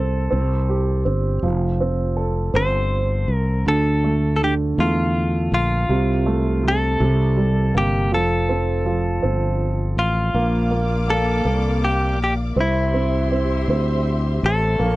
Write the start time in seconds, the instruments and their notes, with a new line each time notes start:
Already playing: fretless electric bass C2, upright piano C4, clean electric guitar A4
0.31 fretless electric bass C2, upright piano C4
0.69 upright piano G4
1.05 fretless electric bass G1, upright piano C4
1.42 fretless electric bass F1, upright piano F3
1.80 upright piano C4
2.16 upright piano A4
2.54 fretless electric bass G1, upright piano C4, clean electric guitar C5
3.28 fretless electric bass C2
3.35 clean electric guitar A#4
3.66 fretless electric bass D2, upright piano D3, clean electric guitar A4
4.04 upright piano A3
4.36 clean electric guitar A4
4.42 upright piano D3, clean electric guitar G4
4.78 fretless electric bass E2, upright piano A3, clean electric guitar F4
5.52 fretless electric bass A#1, clean electric guitar F4
5.89 fretless electric bass C2, upright piano C3
6.26 upright piano A3
6.63 upright piano C3
6.68 clean electric guitar A4
7.00 fretless electric bass C2, upright piano C3
7.37 upright piano G3
7.74 fretless electric bass G1, upright piano A#3, clean electric guitar G4
8.12 fretless electric bass F1, upright piano F3, clean electric guitar A4
8.49 upright piano C4
8.86 upright piano F3
9.23 fretless electric bass G1, upright piano C4
9.97 fretless electric bass A1, clean electric guitar F4
10.34 fretless electric bass A#1, upright piano A#3, string section A#3 D5 F5 D6
10.71 upright piano A#3
11.08 upright piano A#3, clean electric guitar A4
11.45 fretless electric bass C2, upright piano A#3
11.84 clean electric guitar G4
12.19 fretless electric bass A#1
12.24 clean electric guitar G4
12.56 fretless electric bass C2, upright piano C4, string section G4 C5 E5 C6
12.61 clean electric guitar E4
12.94 upright piano C4
13.32 upright piano C4
13.68 fretless electric bass D2, upright piano C4
14.43 fretless electric bass A1, clean electric guitar A4
14.79 fretless electric bass A#1, string section A#3 C#5 F5 C#6, upright piano A#3